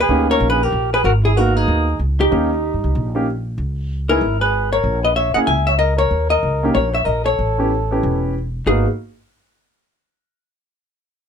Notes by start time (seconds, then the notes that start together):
0.00 G#4 B4
0.09 D2 A#3 C#4 D#4 G4
0.30 A#4 C#5
0.40 A#1
0.50 G#4 B4
0.63 G4 A#4
0.72 A#1
0.93 G#4 B4
1.04 G#1 F#4 A#4
1.24 E4 G#4
1.36 A#3 B3 D#4 F#4 A#4
1.56 D#4 G#4
1.68 D#2
1.99 C#2
2.19 D#4 G4
2.31 D#2 A#3 C#4 D#4 G4
2.74 G2
2.84 C#2
2.95 A#1
3.15 A#3 C#4 D#4 G4
3.58 C#2
4.09 B3 D#4 E4 G#4 A#4
4.21 G#1
4.40 G#4 B4
4.72 A#4 C#5
4.84 A#1
5.03 B4 D#5
5.15 C#5 E5
5.34 A#3 C#4 E4 G#4 D#5 F#5, muted upright bass stroke
5.45 C#2 E5 G#5
5.67 C#5 E5
5.78 A#4 D#5
5.97 A#4 C#5
6.11 D#2
6.29 A#4 D#5
6.43 C#2
6.63 A#3 C#4 D#4 G4
6.73 A#1 A#4 C#5
6.92 C#5 E5
7.04 A#1 A#4 D#5
7.24 A4 C#5
7.39 A1
7.58 B3 C#4 E4 G4
7.91 B3 C#4 E4 G4
8.03 E1
8.66 G#1 A#3 B3 D#4 F#4 G#4